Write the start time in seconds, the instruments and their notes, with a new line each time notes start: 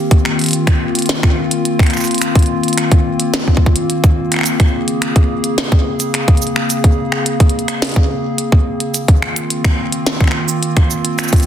Already playing: ambient pad D#3 A#3 C4 F4
0.11 kick, closed hi-hat
0.25 finger snap
0.39 closed hi-hat
0.41 closed hi-hat
0.44 closed hi-hat
0.46 closed hi-hat
0.49 closed hi-hat
0.51 closed hi-hat
0.53 closed hi-hat
0.67 finger snap, kick, closed hi-hat
0.95 closed hi-hat
0.99 closed hi-hat
1.02 closed hi-hat
1.06 snare, closed hi-hat
1.09 closed hi-hat
1.23 finger snap, kick
1.51 closed hi-hat
1.65 closed hi-hat
1.79 finger snap, kick, closed hi-hat
1.83 finger snap, closed hi-hat
1.86 finger snap, closed hi-hat
1.90 finger snap, closed hi-hat
1.93 finger snap, shaker
1.97 finger snap, shaker
2.00 finger snap, shaker
2.04 finger snap, closed hi-hat, shaker
2.11 closed hi-hat
2.15 closed hi-hat
2.18 finger snap, closed hi-hat
2.22 closed hi-hat, shaker
2.35 kick, closed hi-hat
2.39 closed hi-hat
2.43 closed hi-hat
2.46 closed hi-hat
2.63 closed hi-hat
2.68 closed hi-hat
2.73 closed hi-hat
2.78 finger snap, closed hi-hat
2.92 kick, closed hi-hat
3.20 closed hi-hat
3.34 snare, closed hi-hat
3.48 kick
3.57 kick
3.66 kick
3.76 closed hi-hat
3.90 closed hi-hat
4.04 kick, closed hi-hat
4.32 finger snap, closed hi-hat
4.34 finger snap
4.36 finger snap
4.39 finger snap
4.41 finger snap
4.43 ambient pad C#3 G#4, finger snap, closed hi-hat, shaker
4.60 finger snap, kick, closed hi-hat
4.88 closed hi-hat
5.02 finger snap, closed hi-hat
5.16 kick, closed hi-hat
5.44 closed hi-hat
5.58 finger snap, snare, closed hi-hat
5.72 kick
6.00 closed hi-hat, shaker
6.14 finger snap, closed hi-hat
6.28 kick, closed hi-hat
6.37 closed hi-hat
6.42 shaker
6.47 closed hi-hat
6.56 finger snap
6.70 closed hi-hat, shaker
6.84 kick, closed hi-hat
7.12 finger snap
7.26 closed hi-hat
7.40 kick, closed hi-hat
7.49 closed hi-hat
7.59 closed hi-hat
7.68 finger snap, closed hi-hat
7.82 snare, closed hi-hat
7.85 closed hi-hat
7.87 closed hi-hat
7.89 closed hi-hat
7.92 closed hi-hat
7.94 kick, closed hi-hat
8.38 closed hi-hat
8.52 kick
8.80 closed hi-hat
8.94 ambient pad D#3 A#3 C4 F4, closed hi-hat, shaker
9.08 kick, closed hi-hat
9.22 finger snap
9.36 closed hi-hat
9.50 closed hi-hat
9.64 finger snap, kick, closed hi-hat
9.92 closed hi-hat
10.06 snare, closed hi-hat
10.21 finger snap, kick
10.24 finger snap
10.28 finger snap
10.31 finger snap
10.49 shaker
10.63 closed hi-hat
10.77 finger snap, kick, closed hi-hat
10.91 shaker
11.05 closed hi-hat
11.19 finger snap, closed hi-hat, shaker
11.23 shaker
11.28 shaker
11.33 kick, closed hi-hat, shaker
11.36 closed hi-hat, shaker
11.40 closed hi-hat, shaker